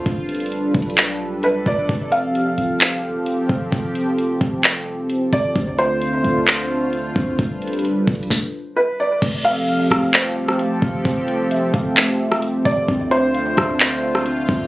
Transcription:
<<
  \new Staff \with { instrumentName = "Synth keys" } { \time 4/4 \key f \lydian \tempo 4 = 131 r1 | r1 | r1 | r1 |
r1 | a8 e'''8 f''8 a8 c''8 f''8 a4 | f''8 a8 e''8 f''8 a8 e''4. | c'8 e''8 f''8 c'8 e''8 f''8 c'4 | }
  \new Staff \with { instrumentName = "Felt piano" } { \time 4/4 \key f \lydian r2. b'8 d''8 | r8 f''2.~ f''8 | r2. r8 d''8 | r8 c''2.~ c''8 |
r2. b'8 d''8 | r8 f''2.~ f''8 | r2. r8 d''8 | r8 c''2.~ c''8 | }
  \new Staff \with { instrumentName = "Analog synth pad" } { \time 4/4 \key f \lydian <g d' f' a' b'>1 | <f c' g'>1~ | <f c' g'>1 | <d a f'>1 |
<g d' a' b'>2 r2 | <f c' g' a'>1~ | <f c' g' a'>1 | <d a f'>1 | }
  \new Staff \with { instrumentName = "808-style bass" } { \clef bass \time 4/4 \key f \lydian g,,4. b,,2 g,,8 | f,,4. f,,4 g,,16 r8. f,,8 | f,,4. f,,2 f,,8 | d,4. d,2 d,8 |
g,,4. b,,8 r2 | f,,4. f,,4 g,,16 r8. f,,8 | f,,4. f,,2 f,,8 | d,4. d,2 d,8 | }
  \new DrumStaff \with { instrumentName = "Drums" } \drummode { \time 4/4 <hh bd>8 hh32 hh32 hh32 hh32 \tuplet 3/2 { hh16 r16 r16 <hh bd>16 hh16 hh16 } <hc hh>4 hh8 bd8 | <hh bd>8 hh8 hh8 hh8 <hc hh>4 hh8 bd8 | <hh bd>8 hh8 hh8 <hh bd>8 <hc hh>4 hh8 bd8 | <hh bd>8 hh8 hh8 hh8 <hc hh>4 hh8 bd8 |
<hh bd>8 hh32 hh32 hh32 hh32 \tuplet 3/2 { hh16 r16 r16 <hh bd>16 hh16 hh16 } <bd sn>4 r4 | <cymc hh bd>8 hh8 hh8 <hh ss>8 <hc hh>8. ss16 hh8 bd8 | <hh bd>8 hh8 hh8 <hh bd>8 <hc hh>8. ss16 hh8 bd8 | <hh bd>8 hh8 hh8 <hh ss>8 <hc hh>8. ss16 hh8 bd8 | }
>>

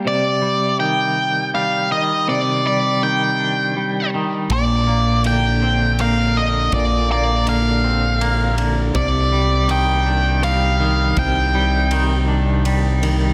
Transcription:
<<
  \new Staff \with { instrumentName = "Lead electric guitar" } { \time 3/4 \key c \dorian \tempo 4 = 81 d''4 g''4 f''8 ees''8 | d''8 d''8 g''4. r8 | d''4 g''4 f''8 ees''8 | d''8 d''8 f''4. r8 |
d''4 g''4 f''4 | g''2~ g''8 r8 | }
  \new Staff \with { instrumentName = "Clean electric guitar" } { \clef bass \time 3/4 \key c \dorian c8 g8 ees4 g8 ees8 | c8 g8 ees8 d'8 g8 ees8 | bes,8 bes8 d8 c'8 bes8 d8 | bes,8 bes8 d8 c'8 bes8 d8 |
c8 g8 ees8 d'8 g8 ees8 | c8 g8 ees8 d'8 g8 ees8 | }
  \new Staff \with { instrumentName = "Fingered electric bass" } { \clef bass \time 3/4 \key c \dorian r2. | r2. | bes,,2. | bes,,2. |
c,2. | c,2. | }
  \new DrumStaff \with { instrumentName = "Drums" } \drummode { \time 3/4 r4 r4 r4 | r4 r4 r4 | <bd cymr>4 cymr4 cymr4 | <bd cymr>4 cymr4 cymr8 cymr8 |
<bd cymr>4 cymr4 cymr4 | <bd cymr>4 cymr4 cymr8 cymr8 | }
>>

